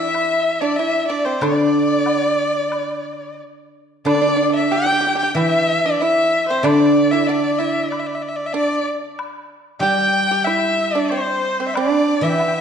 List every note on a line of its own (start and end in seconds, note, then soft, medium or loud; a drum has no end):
0.00 0.77 E3 medium
0.00 0.59 E4 medium
0.00 0.62 E5 medium
0.00 0.63 E5 medium
0.15 high woodblock soft
0.61 0.77 D4 medium
0.61 0.77 D5 medium
0.61 0.81 D5 medium
0.76 1.08 E4 medium
0.76 1.07 E5 medium
0.76 1.05 E5 medium
1.05 1.26 D5 medium
1.05 1.12 E5 medium
1.10 1.25 D4 medium
1.10 1.41 D5 medium
1.25 1.41 C4 medium
1.25 1.42 C5 medium
1.40 3.39 D3 medium
1.40 3.36 D4 medium
1.40 3.39 D5 medium
1.40 3.35 D5 medium
1.40 high woodblock medium
2.06 high woodblock soft
2.06 low woodblock medium
2.72 high woodblock medium
4.05 6.00 D3 medium
4.05 4.13 D4 medium
4.05 4.55 D5 medium
4.05 4.52 D5 loud
4.05 high woodblock medium
4.15 4.20 D4 medium
4.22 4.28 D4 medium
4.29 4.35 D4 medium
4.36 4.41 D4 medium
4.42 4.49 D4 soft
4.50 4.57 D4 medium
4.50 4.73 E5 medium
4.55 4.65 D4 medium
4.55 4.74 E5 medium
4.71 4.76 G4 medium
4.71 5.20 G5 medium
4.71 5.18 G5 loud
4.71 low woodblock soft
4.77 4.85 G4 medium
4.86 4.91 G4 medium
4.92 5.00 G4 medium
5.01 5.06 G4 medium
5.07 5.14 G4 medium
5.15 5.22 G4 medium
5.15 5.34 G5 medium
5.21 5.30 G4 medium
5.21 5.38 G5 medium
5.35 7.27 E3 medium
5.35 5.82 E4 medium
5.35 5.99 E5 medium
5.35 5.87 E5 loud
5.35 high woodblock soft
5.85 6.00 D4 medium
5.85 6.02 D5 medium
6.00 6.46 E4 medium
6.00 6.67 E5 medium
6.00 6.48 E5 loud
6.49 6.64 C4 medium
6.49 6.66 C5 medium
6.63 8.54 D3 medium
6.63 7.09 D4 medium
6.63 7.13 D5 loud
6.63 7.12 D5 medium
6.63 high woodblock medium
7.11 7.27 E4 medium
7.11 7.29 E5 medium
7.11 7.31 E5 medium
7.27 7.58 D4 medium
7.27 7.60 D5 medium
7.27 7.92 D5 medium
7.27 low woodblock soft
7.58 7.89 E4 medium
7.58 7.90 E5 medium
7.90 8.01 D5 medium
7.90 high woodblock soft
7.99 8.08 E5 medium
8.07 8.16 D5 medium
8.14 8.23 E5 medium
8.22 8.30 D5 medium
8.28 8.37 E5 medium
8.36 8.47 D5 medium
8.46 8.54 E5 medium
8.53 8.85 D4 medium
8.53 8.86 D5 medium
8.53 8.85 D5 medium
9.19 high woodblock medium
9.80 11.74 G3 medium
9.80 10.27 G4 medium
9.80 10.46 G5 loud
9.80 10.41 G5 medium
9.80 low woodblock soft
10.31 10.46 G4 medium
10.41 10.94 E5 loud
10.41 10.48 G5 medium
10.46 10.91 E4 medium
10.46 11.11 E5 medium
10.46 high woodblock soft
10.93 11.10 D4 medium
10.93 11.10 D5 medium
11.09 11.56 C4 medium
11.09 11.67 C5 medium
11.09 11.77 C5 medium
11.60 11.75 C4 medium
11.68 11.75 E5 medium
11.74 12.21 D4 medium
11.74 12.24 D5 loud
11.74 12.25 D5 medium
11.74 high woodblock medium
12.21 12.61 E3 medium
12.21 12.61 E4 medium
12.21 12.61 E5 medium
12.21 12.31 E5 medium
12.30 12.41 G5 medium
12.39 12.50 E5 medium
12.39 high woodblock soft
12.39 low woodblock soft
12.48 12.56 G5 medium
12.55 12.61 E5 medium